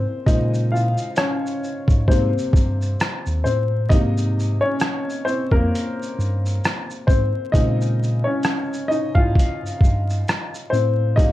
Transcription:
0.00 0.22 A#2 medium
0.00 0.23 G3 medium
0.00 0.28 A#3 medium
0.00 0.28 C4 medium
0.00 0.28 A#4 medium
0.00 0.27 C5 medium
0.26 0.95 A#2 loud
0.26 1.59 C#3 soft
0.26 1.59 G#3 soft
0.26 0.69 D#4 medium
0.26 1.59 C5 medium
0.26 0.69 D#5 medium
0.26 kick loud
0.26 closed hi-hat medium
0.26 shaker medium
0.54 shaker soft
0.72 1.15 F4 medium
0.72 1.18 F5 medium
0.76 shaker soft
0.97 shaker soft
1.16 2.05 C#4 medium
1.16 2.11 C#5 medium
1.16 cross-stick medium
1.16 closed hi-hat medium
1.16 shaker medium
1.46 shaker soft
1.64 shaker soft
1.88 2.06 G#2 medium
1.88 kick medium
1.88 shaker soft
2.08 2.32 G#2 medium
2.08 2.71 C3 medium
2.08 2.72 G3 soft
2.08 2.72 A#3 medium
2.08 3.41 C4 medium
2.08 3.40 C5 medium
2.08 kick medium
2.08 closed hi-hat medium
2.08 shaker medium
2.38 shaker soft
2.53 2.95 G2 medium
2.53 kick medium
2.53 shaker soft
2.82 shaker soft
3.00 cross-stick loud
3.00 closed hi-hat soft
3.00 shaker soft
3.26 3.43 D#2 medium
3.26 shaker soft
3.44 3.86 A2 medium
3.44 3.56 C4 medium
3.44 3.54 C5 medium
3.44 shaker soft
3.89 4.58 G#2 loud
3.89 4.53 C3 medium
3.89 4.54 G3 soft
3.89 4.54 A#3 medium
3.89 4.59 D#4 medium
3.89 4.64 D#5 medium
3.89 kick loud
3.89 closed hi-hat medium
3.89 shaker medium
4.17 shaker soft
4.40 shaker soft
4.61 5.23 C#4 medium
4.61 5.28 C#5 medium
4.80 cross-stick medium
4.80 closed hi-hat medium
4.80 shaker medium
5.10 shaker soft
5.25 5.51 C4 medium
5.25 5.50 C5 medium
5.25 shaker soft
5.52 5.69 F2 medium
5.52 7.05 A#3 medium
5.52 7.04 A#4 medium
5.52 kick medium
5.75 closed hi-hat medium
5.75 shaker medium
6.03 shaker soft
6.19 6.59 G2 medium
6.19 shaker soft
6.46 shaker medium
6.64 cross-stick loud
6.64 closed hi-hat soft
6.64 shaker soft
6.90 shaker soft
7.07 7.32 G#2 medium
7.07 7.51 C4 medium
7.07 7.50 C5 medium
7.07 kick medium
7.07 shaker soft
7.52 8.22 A#2 loud
7.52 8.17 C#3 medium
7.52 8.17 G#3 medium
7.52 8.17 C4 medium
7.52 8.22 D#4 medium
7.52 8.27 D#5 medium
7.52 kick loud
7.52 closed hi-hat medium
7.52 shaker medium
7.81 shaker medium
8.03 shaker soft
8.24 8.87 C#4 medium
8.24 8.91 C#5 medium
8.43 cross-stick medium
8.43 closed hi-hat medium
8.43 shaker medium
8.74 shaker soft
8.88 9.15 D#4 medium
8.88 9.16 D#5 medium
8.88 shaker soft
9.15 9.33 G#2 medium
9.15 10.68 F4 medium
9.15 10.67 F5 loud
9.15 kick medium
9.35 kick medium
9.35 closed hi-hat medium
9.35 shaker medium
9.63 9.70 G2 soft
9.63 shaker soft
9.81 10.22 G2 medium
9.81 kick medium
9.81 shaker soft
10.10 shaker medium
10.28 cross-stick loud
10.28 closed hi-hat soft
10.28 shaker soft
10.54 shaker soft
10.70 11.14 A2 medium
10.70 11.15 C4 medium
10.70 11.18 C5 medium
10.70 shaker soft
11.16 11.32 G#2 loud
11.16 11.32 A#2 soft
11.16 11.32 G3 medium
11.16 11.32 A#3 medium
11.16 11.32 D#4 medium
11.16 11.32 D#5 loud
11.16 kick loud
11.16 closed hi-hat medium
11.16 shaker medium

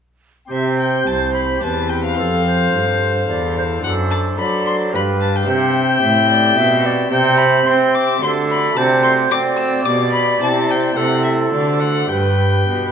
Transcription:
0.47 1.57 C4 soft
0.47 1.58 G4 soft
0.47 1.59 C5 soft
0.51 1.03 C3 soft
0.51 1.04 C3 medium
0.51 1.65 C5 medium
0.51 0.78 E5 medium
0.79 1.08 G5 medium
1.07 1.59 C2 soft
1.07 1.62 C2 medium
1.07 1.34 A5 medium
1.35 1.62 B5 medium
1.59 2.14 E2 medium
1.59 2.11 C4 soft
1.59 2.15 G4 soft
1.59 2.15 C5 soft
1.63 2.20 E2 medium
1.63 2.18 B4 medium
1.63 1.91 A5 medium
1.89 2.04 G5 medium
2.05 3.80 F5 medium
2.13 2.69 C4 soft
2.13 3.78 A4 soft
2.13 3.79 C5 soft
2.19 2.72 F2 medium
2.19 2.70 F2 soft
2.19 2.46 A4 medium
2.46 3.27 C5 medium
2.73 3.27 G2 medium
2.73 3.25 G2 medium
3.28 3.82 E2 medium
3.28 3.80 E2 medium
3.28 3.55 D5 medium
3.58 3.64 C5 medium
3.79 4.86 D4 medium
3.79 4.89 A4 medium
3.79 4.89 C5 soft
3.83 4.37 F#2 medium
3.83 4.35 F#2 medium
3.83 4.39 A4 medium
3.83 3.92 F#5 medium
4.11 4.19 A5 medium
4.38 4.89 F#3 medium
4.38 4.96 F#3 medium
4.38 4.95 D5 medium
4.38 4.66 B5 medium
4.67 4.75 C6 medium
4.88 5.44 D4 medium
4.88 5.42 G4 medium
4.88 5.46 F5 medium
4.93 5.44 G2 medium
4.93 5.47 G2 medium
4.93 5.47 B4 medium
4.93 5.03 B5 medium
5.21 5.37 A5 medium
5.36 7.11 G5 loud
5.43 7.05 C4 medium
5.43 7.06 G4 medium
5.43 7.07 E5 medium
5.47 5.98 C3 medium
5.47 6.01 C3 medium
5.47 6.00 C5 medium
6.01 6.53 A2 medium
6.01 6.56 A2 medium
6.01 6.29 E5 medium
6.30 6.59 D5 medium
6.56 7.07 B2 medium
6.56 7.11 B2 medium
6.56 6.87 E5 medium
6.86 7.11 D5 medium
7.07 7.66 C4 medium
7.07 8.17 G4 medium
7.07 8.17 E5 medium
7.11 7.62 C3 medium
7.11 7.66 C3 medium
7.11 7.92 C5 medium
7.11 7.39 G5 loud
7.38 7.68 B5 loud
7.66 8.20 C4 medium
7.66 8.18 C4 medium
7.66 7.96 C6 medium
7.95 8.22 D6 loud
8.18 8.70 A3 medium
8.18 8.71 F#4 medium
8.18 8.73 D5 medium
8.22 8.76 D3 medium
8.22 8.73 D3 medium
8.22 8.79 A4 medium
8.22 8.31 C6 loud
8.51 8.78 B5 loud
8.72 9.27 C3 medium
8.72 9.81 A3 medium
8.72 9.81 F#4 medium
8.72 9.82 D5 medium
8.77 9.30 C3 medium
8.77 9.33 C5 medium
8.77 9.03 A5 loud
9.04 9.12 C6 loud
9.31 9.82 C4 medium
9.31 9.86 C4 medium
9.31 10.98 D5 medium
9.31 9.39 D6 loud
9.58 9.87 E6 medium
9.83 10.37 B2 medium
9.83 10.40 B2 medium
9.83 10.38 G4 medium
9.83 10.38 D5 medium
9.83 10.12 D6 medium
10.13 10.40 B5 loud
10.38 10.93 C3 medium
10.38 10.96 C3 medium
10.38 10.91 E4 medium
10.38 10.93 C5 medium
10.43 10.72 A5 medium
10.70 10.98 G5 medium
10.92 11.48 C3 medium
10.92 11.45 A3 soft
10.92 11.50 E4 medium
10.92 11.48 C5 soft
10.96 11.52 C3 medium
10.96 12.10 A4 medium
10.96 11.23 F#5 medium
11.24 11.32 E5 medium
11.47 12.05 A3 medium
11.47 12.06 F#4 soft
11.47 12.07 C5 soft
11.51 12.06 D3 medium
11.51 12.09 D3 medium
11.51 11.82 D5 medium
11.80 12.10 F#5 medium
12.06 12.64 G2 medium
12.06 12.92 G4 soft
12.06 12.92 B4 soft
12.06 12.92 G5 medium
12.10 12.67 G2 medium
12.10 12.92 B4 medium
12.68 12.92 B2 medium

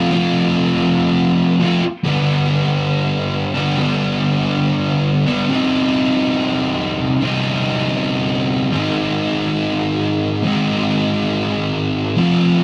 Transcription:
0.00 0.11 A3 medium
0.00 0.12 C4 medium
0.00 0.12 F4 medium
0.11 1.58 F3 medium
0.11 1.60 A3 medium
0.11 1.61 C4 loud
0.11 1.62 F4 loud
1.59 1.81 F3 medium
1.59 1.82 A3 medium
1.59 1.83 C4 medium
1.64 1.84 F4 medium
2.03 3.54 G2 medium
2.03 3.55 D3 medium
2.03 3.56 G3 medium
2.03 3.54 B3 medium
2.03 3.53 D4 medium
3.54 3.75 G2 medium
3.54 3.76 D3 medium
3.54 3.78 G3 medium
3.54 3.76 B3 medium
3.54 3.76 D4 medium
3.76 5.27 G2 medium
3.76 5.27 D3 medium
3.76 5.27 G3 loud
3.76 5.27 B3 loud
3.76 5.25 D4 medium
5.26 5.50 G2 medium
5.26 5.48 D3 medium
5.26 5.48 G3 medium
5.26 5.48 B3 medium
5.26 5.48 D4 medium
5.48 7.20 C3 medium
5.48 7.20 G3 medium
5.48 7.23 C4 loud
5.48 7.24 D#4 medium
7.21 8.71 C3 medium
7.21 8.71 G3 medium
7.21 8.74 C4 medium
7.21 8.74 D#4 loud
8.71 10.42 G#2 loud
8.71 10.43 D#3 loud
8.71 10.44 G#3 loud
8.71 10.45 C4 loud
8.71 10.44 D#4 loud
10.43 12.15 G#2 loud
10.43 12.15 D#3 loud
10.43 12.15 G#3 loud
10.43 12.19 C4 loud
10.43 12.16 D#4 loud
12.16 12.64 F3 loud
12.16 12.64 A3 medium
12.16 12.64 C4 loud
12.16 12.64 F4 loud

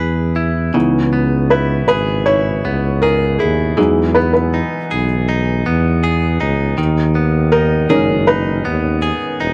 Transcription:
0.00 0.71 E2 medium
0.00 1.19 E3 medium
0.00 0.36 E4 soft
0.00 1.88 G#4 medium
0.00 1.50 B4 soft
0.36 1.12 E4 soft
0.74 1.90 C#2 medium
0.74 3.77 C#3 medium
0.74 1.84 E3 soft
0.74 1.84 B3 soft
0.74 1.85 D#4 soft
1.13 2.64 B3 soft
1.50 2.26 E4 soft
1.50 1.86 B4 medium
1.88 2.60 G#1 medium
1.88 3.02 G#4 medium
1.88 2.23 B4 medium
2.26 3.40 E4 soft
2.26 3.04 C#5 medium
2.65 3.37 C#2 medium
2.65 4.15 B3 soft
3.02 4.91 G#4 medium
3.02 3.37 A#4 medium
3.39 3.76 D#2 medium
3.39 4.53 E4 soft
3.39 3.75 G#4 medium
3.77 4.61 E2 loud
3.77 6.77 E3 medium
3.77 6.74 F#3 soft
3.77 6.74 G#3 soft
3.77 6.75 D#4 medium
3.77 4.16 G#4 medium
4.14 5.66 B3 soft
4.14 4.32 B4 medium
4.33 5.05 B4 medium
4.54 5.28 D#4 medium
4.91 5.63 B1 medium
4.91 6.03 G#4 medium
5.29 6.40 D#4 medium
5.66 6.37 E2 medium
5.66 7.15 B3 medium
6.04 7.89 G#4 medium
6.40 6.76 C#2 medium
6.40 7.52 D#4 medium
6.78 7.87 D#2 loud
6.78 9.54 D#3 medium
7.15 8.64 B3 medium
7.52 8.26 D#4 medium
7.52 7.88 A#4 medium
7.89 8.62 F#1 medium
7.89 9.54 D#3 medium
7.89 9.54 G#3 soft
7.89 9.54 C#4 medium
7.89 9.01 G#4 medium
7.89 8.29 A#4 medium
8.27 9.39 D#4 medium
8.27 9.54 B4 medium
8.65 9.11 D#2 medium
8.65 9.54 B3 medium
9.02 9.54 G#4 medium
9.40 9.54 E1 medium
9.40 9.54 D#4 medium

